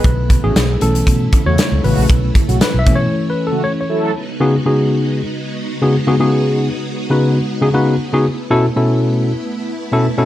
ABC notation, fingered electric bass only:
X:1
M:4/4
L:1/16
Q:1/4=117
K:C#m
V:1 name="Fingered electric bass" clef=bass
B,,,3 A,,, B,,,2 B,,,2 B,,2 z E,, z C,, A,,, ^A,,, | B,,,2 z B,,, z B,,, B,,2 z8 | z16 | z16 |
z16 |]